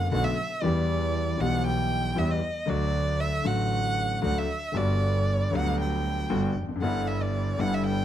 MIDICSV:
0, 0, Header, 1, 4, 480
1, 0, Start_track
1, 0, Key_signature, 1, "major"
1, 0, Tempo, 515464
1, 587, Time_signature, 4, 2, 24, 8
1, 7494, End_track
2, 0, Start_track
2, 0, Title_t, "Violin"
2, 0, Program_c, 0, 40
2, 0, Note_on_c, 0, 78, 80
2, 101, Note_off_c, 0, 78, 0
2, 113, Note_on_c, 0, 78, 94
2, 221, Note_on_c, 0, 76, 86
2, 235, Note_off_c, 0, 78, 0
2, 580, Note_on_c, 0, 74, 85
2, 594, Note_off_c, 0, 76, 0
2, 1312, Note_on_c, 0, 78, 98
2, 1326, Note_off_c, 0, 74, 0
2, 1547, Note_off_c, 0, 78, 0
2, 1552, Note_on_c, 0, 79, 94
2, 2030, Note_on_c, 0, 76, 84
2, 2044, Note_off_c, 0, 79, 0
2, 2149, Note_on_c, 0, 75, 78
2, 2163, Note_off_c, 0, 76, 0
2, 2501, Note_on_c, 0, 74, 91
2, 2515, Note_off_c, 0, 75, 0
2, 2978, Note_on_c, 0, 76, 91
2, 2992, Note_off_c, 0, 74, 0
2, 3223, Note_on_c, 0, 78, 87
2, 3237, Note_off_c, 0, 76, 0
2, 3943, Note_off_c, 0, 78, 0
2, 3948, Note_on_c, 0, 78, 80
2, 4079, Note_on_c, 0, 76, 79
2, 4093, Note_off_c, 0, 78, 0
2, 4440, Note_on_c, 0, 74, 83
2, 4454, Note_off_c, 0, 76, 0
2, 5166, Note_on_c, 0, 78, 92
2, 5180, Note_off_c, 0, 74, 0
2, 5401, Note_off_c, 0, 78, 0
2, 5411, Note_on_c, 0, 79, 71
2, 6085, Note_off_c, 0, 79, 0
2, 6346, Note_on_c, 0, 78, 74
2, 6586, Note_on_c, 0, 76, 67
2, 6600, Note_off_c, 0, 78, 0
2, 6722, Note_on_c, 0, 74, 72
2, 6736, Note_off_c, 0, 76, 0
2, 7077, Note_on_c, 0, 78, 85
2, 7091, Note_off_c, 0, 74, 0
2, 7207, Note_on_c, 0, 76, 75
2, 7221, Note_off_c, 0, 78, 0
2, 7318, Note_off_c, 0, 76, 0
2, 7323, Note_on_c, 0, 79, 86
2, 7494, Note_off_c, 0, 79, 0
2, 7494, End_track
3, 0, Start_track
3, 0, Title_t, "Grand piano"
3, 0, Program_c, 1, 0
3, 108, Note_on_c, 1, 35, 76
3, 109, Note_on_c, 1, 47, 84
3, 110, Note_on_c, 1, 57, 67
3, 111, Note_on_c, 1, 50, 65
3, 114, Note_on_c, 1, 59, 70
3, 114, Note_on_c, 1, 66, 77
3, 309, Note_off_c, 1, 35, 0
3, 309, Note_off_c, 1, 47, 0
3, 310, Note_off_c, 1, 50, 0
3, 310, Note_off_c, 1, 57, 0
3, 312, Note_off_c, 1, 59, 0
3, 312, Note_off_c, 1, 66, 0
3, 574, Note_on_c, 1, 52, 70
3, 588, Note_off_c, 1, 52, 0
3, 588, Note_on_c, 1, 55, 70
3, 592, Note_on_c, 1, 40, 74
3, 596, Note_on_c, 1, 52, 84
3, 601, Note_on_c, 1, 59, 64
3, 616, Note_on_c, 1, 67, 78
3, 1268, Note_off_c, 1, 52, 0
3, 1269, Note_off_c, 1, 55, 0
3, 1271, Note_off_c, 1, 40, 0
3, 1276, Note_off_c, 1, 59, 0
3, 1282, Note_on_c, 1, 52, 70
3, 1283, Note_off_c, 1, 67, 0
3, 1296, Note_on_c, 1, 55, 62
3, 1307, Note_on_c, 1, 35, 80
3, 1307, Note_on_c, 1, 47, 80
3, 1310, Note_on_c, 1, 59, 56
3, 1324, Note_on_c, 1, 67, 74
3, 1975, Note_off_c, 1, 52, 0
3, 1982, Note_off_c, 1, 55, 0
3, 1987, Note_off_c, 1, 47, 0
3, 1988, Note_off_c, 1, 35, 0
3, 1989, Note_off_c, 1, 59, 0
3, 1996, Note_off_c, 1, 67, 0
3, 2011, Note_on_c, 1, 52, 78
3, 2016, Note_on_c, 1, 40, 78
3, 2017, Note_on_c, 1, 55, 69
3, 2019, Note_on_c, 1, 59, 62
3, 2022, Note_on_c, 1, 67, 78
3, 2221, Note_off_c, 1, 40, 0
3, 2221, Note_off_c, 1, 55, 0
3, 2222, Note_off_c, 1, 52, 0
3, 2222, Note_off_c, 1, 59, 0
3, 2224, Note_off_c, 1, 67, 0
3, 2475, Note_on_c, 1, 50, 83
3, 2485, Note_on_c, 1, 54, 65
3, 2491, Note_on_c, 1, 38, 79
3, 2498, Note_on_c, 1, 57, 64
3, 2511, Note_on_c, 1, 66, 78
3, 3178, Note_off_c, 1, 54, 0
3, 3179, Note_off_c, 1, 50, 0
3, 3181, Note_off_c, 1, 38, 0
3, 3185, Note_off_c, 1, 57, 0
3, 3191, Note_off_c, 1, 66, 0
3, 3193, Note_on_c, 1, 50, 60
3, 3207, Note_on_c, 1, 54, 59
3, 3211, Note_on_c, 1, 33, 70
3, 3215, Note_on_c, 1, 45, 74
3, 3220, Note_on_c, 1, 57, 58
3, 3231, Note_on_c, 1, 66, 68
3, 3895, Note_off_c, 1, 50, 0
3, 3902, Note_off_c, 1, 54, 0
3, 3904, Note_off_c, 1, 33, 0
3, 3906, Note_off_c, 1, 45, 0
3, 3909, Note_off_c, 1, 57, 0
3, 3914, Note_off_c, 1, 66, 0
3, 3926, Note_on_c, 1, 54, 62
3, 3928, Note_on_c, 1, 50, 76
3, 3930, Note_on_c, 1, 38, 79
3, 3933, Note_on_c, 1, 57, 65
3, 3934, Note_on_c, 1, 66, 70
3, 4139, Note_off_c, 1, 54, 0
3, 4141, Note_off_c, 1, 38, 0
3, 4142, Note_off_c, 1, 50, 0
3, 4143, Note_off_c, 1, 57, 0
3, 4143, Note_off_c, 1, 66, 0
3, 4393, Note_on_c, 1, 50, 69
3, 4408, Note_on_c, 1, 55, 61
3, 4415, Note_on_c, 1, 31, 72
3, 4417, Note_on_c, 1, 43, 79
3, 4419, Note_on_c, 1, 59, 58
3, 4429, Note_on_c, 1, 66, 75
3, 5100, Note_off_c, 1, 50, 0
3, 5108, Note_off_c, 1, 55, 0
3, 5111, Note_off_c, 1, 31, 0
3, 5112, Note_off_c, 1, 43, 0
3, 5113, Note_off_c, 1, 59, 0
3, 5118, Note_off_c, 1, 66, 0
3, 5128, Note_on_c, 1, 50, 75
3, 5136, Note_on_c, 1, 55, 64
3, 5148, Note_on_c, 1, 38, 84
3, 5150, Note_on_c, 1, 59, 57
3, 5162, Note_on_c, 1, 54, 75
3, 5829, Note_off_c, 1, 55, 0
3, 5833, Note_off_c, 1, 50, 0
3, 5836, Note_off_c, 1, 38, 0
3, 5836, Note_off_c, 1, 59, 0
3, 5842, Note_off_c, 1, 54, 0
3, 5860, Note_on_c, 1, 50, 68
3, 5862, Note_on_c, 1, 43, 76
3, 5863, Note_on_c, 1, 31, 90
3, 5865, Note_on_c, 1, 55, 64
3, 5866, Note_on_c, 1, 66, 83
3, 5867, Note_on_c, 1, 59, 65
3, 6069, Note_off_c, 1, 50, 0
3, 6070, Note_off_c, 1, 31, 0
3, 6070, Note_off_c, 1, 43, 0
3, 6071, Note_off_c, 1, 55, 0
3, 6072, Note_off_c, 1, 59, 0
3, 6072, Note_off_c, 1, 66, 0
3, 6166, Note_on_c, 1, 40, 49
3, 6225, Note_on_c, 1, 41, 59
3, 6230, Note_off_c, 1, 40, 0
3, 6290, Note_off_c, 1, 41, 0
3, 6292, Note_on_c, 1, 42, 75
3, 6334, Note_on_c, 1, 50, 70
3, 6345, Note_on_c, 1, 55, 62
3, 6352, Note_on_c, 1, 31, 80
3, 6353, Note_off_c, 1, 42, 0
3, 6354, Note_on_c, 1, 43, 84
3, 6356, Note_on_c, 1, 59, 63
3, 6373, Note_on_c, 1, 64, 76
3, 7025, Note_off_c, 1, 50, 0
3, 7031, Note_off_c, 1, 55, 0
3, 7035, Note_off_c, 1, 31, 0
3, 7036, Note_off_c, 1, 43, 0
3, 7037, Note_off_c, 1, 59, 0
3, 7045, Note_off_c, 1, 64, 0
3, 7053, Note_on_c, 1, 50, 66
3, 7064, Note_on_c, 1, 55, 70
3, 7066, Note_on_c, 1, 31, 85
3, 7070, Note_on_c, 1, 43, 76
3, 7072, Note_on_c, 1, 59, 64
3, 7088, Note_on_c, 1, 64, 70
3, 7494, Note_off_c, 1, 31, 0
3, 7494, Note_off_c, 1, 43, 0
3, 7494, Note_off_c, 1, 50, 0
3, 7494, Note_off_c, 1, 55, 0
3, 7494, Note_off_c, 1, 59, 0
3, 7494, Note_off_c, 1, 64, 0
3, 7494, End_track
4, 0, Start_track
4, 0, Title_t, "Double bass"
4, 0, Program_c, 2, 43
4, 109, Note_on_c, 2, 35, 89
4, 309, Note_off_c, 2, 35, 0
4, 591, Note_on_c, 2, 40, 92
4, 1271, Note_off_c, 2, 40, 0
4, 1310, Note_on_c, 2, 35, 82
4, 1989, Note_off_c, 2, 35, 0
4, 2024, Note_on_c, 2, 40, 81
4, 2225, Note_off_c, 2, 40, 0
4, 2502, Note_on_c, 2, 38, 86
4, 3187, Note_off_c, 2, 38, 0
4, 3222, Note_on_c, 2, 33, 84
4, 3909, Note_off_c, 2, 33, 0
4, 3947, Note_on_c, 2, 38, 92
4, 4150, Note_off_c, 2, 38, 0
4, 4423, Note_on_c, 2, 31, 84
4, 5115, Note_off_c, 2, 31, 0
4, 5153, Note_on_c, 2, 38, 82
4, 5838, Note_off_c, 2, 38, 0
4, 5876, Note_on_c, 2, 31, 88
4, 6076, Note_off_c, 2, 31, 0
4, 6119, Note_on_c, 2, 29, 54
4, 6344, Note_off_c, 2, 29, 0
4, 6349, Note_on_c, 2, 31, 78
4, 7033, Note_off_c, 2, 31, 0
4, 7066, Note_on_c, 2, 31, 76
4, 7494, Note_off_c, 2, 31, 0
4, 7494, End_track
0, 0, End_of_file